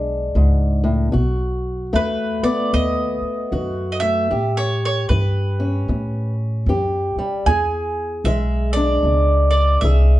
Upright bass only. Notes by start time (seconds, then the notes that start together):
Already playing: B1
0.35 C#2
1.14 B1
1.94 E2
2.43 muted upright bass stroke
2.73 D#2
3.21 muted upright bass stroke
3.52 F#2
4.31 A2
5.10 G2
5.88 A2
6.66 F#2
7.16 muted upright bass stroke
7.46 E2
8.24 B1
9.03 C#2
9.82 C2